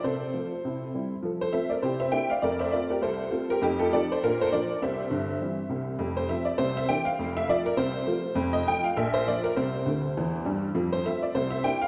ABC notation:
X:1
M:4/4
L:1/8
Q:"Swing" 1/4=202
K:F
V:1 name="Honky-tonk piano"
[Ac]6- [Ac] z | z [Ac] [ce] [Bd] [Gc] [ce] [eg] [df] | [Bd] [ce] [Bd] [GB] [Ac]3 [GB] | [_EG] [FA] [Ad] [Ac] [FB] [Ac] [Bd]2 |
[ce]6- [ce] z | z c e d c e g f- | f e d B c4 | z _e g f =e c d B |
c6- c z | z c e d c e g f |]
V:2 name="Honky-tonk piano" clef=bass
C,2 [F,A,F]2 [C,E]2 [G,CE]2 | [F,A]2 [A,CF]2 [C,E]2 [B,DE]2 | [F,,A,]2 [A,CF]2 C,,2 [A,CF]2 | [F,,A,]2 [F,C_E]2 [B,,D]2 [F,B,D]2 |
[C,,C,]2 [G,,,G,,]2 [E,G,C]2 [C,,C,]2 | [F,,,F,,]2 [F,A,C]2 [C,,C,]2 [E,B,D]2 | [F,,,F,,]2 [F,A,F]2 [C,,C,]2 [F,A,F]2 | [F,,,F,,]2 [F,A,F]2 [B,,,B,,]2 [F,B,F]2 |
[C,,C,]2 [D,,D,]2 [E,,E,]2 [G,,G,]2 | [F,,F,]2 [A,CF]2 [C,,C,]2 [B,DE]2 |]